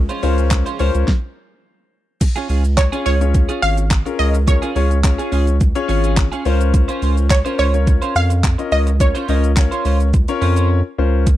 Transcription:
Already playing: C#3 F3 G#3 C#4
0.09 C#4 F4 C5, closed hi-hat, shaker
0.23 C#2 C#4 F4 A#4 C5, open hi-hat, shaker
0.38 muted clean electric guitar stroke, closed hi-hat, shaker
0.51 muted clean electric guitar stroke, kick, clap, closed hi-hat, shaker
0.66 C#4 F4 C5, closed hi-hat, shaker
0.79 C#2 C#4 F4 A#4 C5, open hi-hat, shaker
0.94 C#2, muted clean electric guitar stroke, closed hi-hat, shaker
1.08 kick, snare
2.21 muted clean electric guitar stroke, kick, closed hi-hat, crash, shaker
2.36 C#4 F4 G#4, closed hi-hat, shaker
2.49 C#2 C#4 F4 G#4, open hi-hat, shaker
2.64 muted clean electric guitar stroke, closed hi-hat, shaker
2.77 C#5, muted clean electric guitar stroke, kick, clap, closed hi-hat, shaker
2.92 C#4 F4 G#4 C#5, closed hi-hat, shaker
3.05 C#2 C#4 F4 G#4 C#5, open hi-hat, shaker
3.21 C#4 F4 G#4 C#5, muted clean electric guitar stroke, closed hi-hat, shaker
3.34 muted clean electric guitar stroke, kick, closed hi-hat, shaker
3.49 C#4 F4 G#4, closed hi-hat, shaker
3.62 G#1 F5, muted clean electric guitar stroke, open hi-hat, shaker
3.77 muted clean electric guitar stroke, closed hi-hat, shaker
3.90 muted clean electric guitar stroke, kick, clap, closed hi-hat, shaker
4.06 C#4 F4 G#4 A#4, muted clean electric guitar stroke, closed hi-hat, shaker
4.19 C#2 D#5, open hi-hat, shaker
4.34 muted clean electric guitar stroke, closed hi-hat, shaker
4.47 C#4 F4 G#4 A#4 C#5, muted clean electric guitar stroke, kick, closed hi-hat, shaker
4.62 C#4 F4 G#4, closed hi-hat, shaker
4.75 C#2 C#4 F4 G#4 C#5, open hi-hat, shaker
4.90 muted clean electric guitar stroke, closed hi-hat, shaker
5.03 C#4 F4 G#4 C#5, muted clean electric guitar stroke, kick, clap, closed hi-hat, shaker
5.18 C#4 F4 G#4, closed hi-hat, shaker
5.32 C#2 C#4 F4 G#4, open hi-hat, shaker
5.47 muted clean electric guitar stroke, closed hi-hat, shaker
5.60 muted clean electric guitar stroke, kick, closed hi-hat, shaker
5.75 C#4 F4 G#4 C#5, muted clean electric guitar stroke, closed hi-hat, shaker
5.89 G#1 C#4 F4 G#4, open hi-hat, shaker
6.04 C#4 F4 G#4, closed hi-hat, shaker
6.17 muted clean electric guitar stroke, kick, clap, closed hi-hat, shaker
6.32 C#4 F4 G#4, closed hi-hat, shaker
6.45 C#2 C#4 F4 A#4 C5, open hi-hat, shaker
6.60 muted clean electric guitar stroke, closed hi-hat, shaker
6.73 muted clean electric guitar stroke, kick, closed hi-hat, shaker
6.88 C#4 F4 C5, closed hi-hat, shaker
7.02 C#2 C#4 F4 C5, open hi-hat, shaker
7.17 muted clean electric guitar stroke, closed hi-hat, shaker
7.30 C#5, muted clean electric guitar stroke, kick, clap, closed hi-hat, shaker
7.45 C#4 F4 A#4 C5, closed hi-hat, shaker
7.58 C#2 C#4 F4 C5 C#5, open hi-hat, shaker
7.73 C#4 F4 A#4 C#5, muted clean electric guitar stroke, closed hi-hat, shaker
7.87 muted clean electric guitar stroke, kick, closed hi-hat, shaker
8.02 C#4 F4 C5, closed hi-hat, shaker
8.15 F2 F5, muted clean electric guitar stroke, open hi-hat, shaker
8.30 muted clean electric guitar stroke, closed hi-hat, shaker
8.43 muted clean electric guitar stroke, kick, clap, closed hi-hat, shaker
8.58 C#4 F4 A#4 D#5, muted clean electric guitar stroke, closed hi-hat, shaker
8.72 C#2 D#5, open hi-hat, shaker
8.87 muted clean electric guitar stroke, closed hi-hat, shaker
9.00 C#4 F4 A#4 C#5, muted clean electric guitar stroke, kick, closed hi-hat, shaker
9.15 C#4 F4 C5, closed hi-hat, shaker
9.28 C#2 C#4 F4 A#4 C5 D#5, open hi-hat, shaker
9.43 muted clean electric guitar stroke, closed hi-hat, shaker
9.56 C#4 F4 A#4 C#5, muted clean electric guitar stroke, kick, clap, closed hi-hat, shaker
9.71 C#4 F4 C5, closed hi-hat, shaker
9.85 C#2 C#4 F4 C5, open hi-hat, shaker
10.00 muted clean electric guitar stroke, closed hi-hat, shaker
10.13 muted clean electric guitar stroke, kick, closed hi-hat, shaker
10.28 C#4 F4 A#4 C#5, muted clean electric guitar stroke, closed hi-hat, shaker
10.41 F2 C#4 F4 C5, open hi-hat, shaker
10.56 C#4 F4 C5, closed hi-hat, shaker
10.98 C#2 C#4 F4 A#4 C5
11.27 muted clean electric guitar stroke, kick, closed hi-hat, shaker

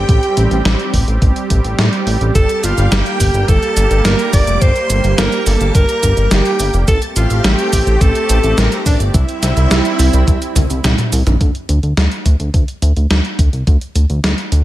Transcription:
Already playing: G3 C4 G4 G5
0.09 A1, kick, closed hi-hat
0.23 closed hi-hat
0.37 A1, closed hi-hat
0.51 A1, closed hi-hat
0.65 A1, snare, closed hi-hat
0.80 closed hi-hat
0.94 A1, kick, open hi-hat
1.08 A1, closed hi-hat
1.22 A1, kick, closed hi-hat
1.36 closed hi-hat
1.50 A1, kick, closed hi-hat
1.64 A1, closed hi-hat
1.78 A2, snare, closed hi-hat
1.93 closed hi-hat
2.07 A1, open hi-hat
2.21 A1, closed hi-hat
2.35 G1 A#3 A4 A5, kick, closed hi-hat, shaker
2.49 closed hi-hat, shaker
2.63 G1 F4 F5, closed hi-hat, shaker
2.78 G1, closed hi-hat, shaker
2.92 G1 G4 G5, snare, closed hi-hat, shaker
3.06 closed hi-hat, shaker
3.20 G1, kick, open hi-hat, shaker
3.34 G1, closed hi-hat, shaker
3.48 G1 A4 A5, kick, closed hi-hat, shaker
3.63 closed hi-hat, shaker
3.77 G1, closed hi-hat, shaker
3.91 G1, closed hi-hat, shaker
4.05 G1 A#4 A#5, snare, closed hi-hat, shaker
4.19 closed hi-hat, shaker
4.33 G1 D5 D6, kick, open hi-hat, shaker
4.47 F1, closed hi-hat, shaker
4.61 G1 C5 C6, kick, closed hi-hat, shaker
4.76 closed hi-hat, shaker
4.90 G1, closed hi-hat, shaker
5.04 G1, closed hi-hat, shaker
5.18 G1 A#4 A#5, snare, closed hi-hat, shaker
5.32 closed hi-hat, shaker
5.46 G1 A4 A5, open hi-hat, shaker
5.61 G1, closed hi-hat, shaker
5.75 G1 A#4 A#5, kick, closed hi-hat, shaker
5.89 closed hi-hat, shaker
6.03 G1, kick, closed hi-hat, shaker
6.17 G1, closed hi-hat, shaker
6.31 G1 G4 G5, snare, closed hi-hat, shaker
6.45 closed hi-hat, shaker
6.60 G1, open hi-hat, shaker
6.74 F1, closed hi-hat, shaker
6.88 A1 A3 C4 G4 A4 A5, kick, closed hi-hat, shaker
7.02 closed hi-hat, shaker
7.16 A1 F4 F5, closed hi-hat, shaker
7.30 A1, closed hi-hat, shaker
7.44 A1 G4 G5, snare, closed hi-hat, shaker
7.59 closed hi-hat, shaker
7.73 A1, kick, open hi-hat, shaker
7.87 A1, closed hi-hat, shaker
8.01 A1 A4 A5, kick, closed hi-hat, shaker
8.15 closed hi-hat, shaker
8.29 A1, closed hi-hat, shaker
8.44 A1, closed hi-hat, shaker
8.58 A1 A#4 A#5, snare, closed hi-hat, shaker
8.72 closed hi-hat, shaker
8.86 A1 D4 D5, kick, open hi-hat, shaker
9.00 G1, closed hi-hat, shaker
9.14 C2 G3 C4 E4 E5, kick, closed hi-hat, shaker
9.29 closed hi-hat, shaker
9.43 C2, snare, closed hi-hat, shaker
9.57 C2, closed hi-hat, shaker
9.71 C2, snare, closed hi-hat, shaker
9.85 closed hi-hat, shaker
9.99 C2, open hi-hat, shaker
10.13 C2, closed hi-hat, shaker
10.27 C2, kick, closed hi-hat, shaker
10.42 closed hi-hat, shaker
10.56 C2, kick, closed hi-hat, high tom, shaker
10.70 C2, closed hi-hat, shaker
10.84 C2, snare, closed hi-hat, mid tom, shaker
10.98 closed hi-hat, mid tom, shaker
11.12 C2, open hi-hat, shaker
11.27 A#1, closed hi-hat, mid tom, shaker
11.41 D2, kick, closed hi-hat
11.55 closed hi-hat
11.69 D2, closed hi-hat
11.83 D2, closed hi-hat
11.97 D2, snare, closed hi-hat
12.12 closed hi-hat
12.26 D2, kick, closed hi-hat
12.40 D2, closed hi-hat
12.54 D2, kick, closed hi-hat
12.68 closed hi-hat
12.82 D2, closed hi-hat
12.96 D2, closed hi-hat
13.11 D2, snare, closed hi-hat
13.25 closed hi-hat
13.39 D2, kick, closed hi-hat
13.53 C2, closed hi-hat
13.67 D2, kick, closed hi-hat
13.81 closed hi-hat
13.95 D2, closed hi-hat
14.10 D2, closed hi-hat
14.24 D2, snare, closed hi-hat
14.38 closed hi-hat
14.52 D2, closed hi-hat

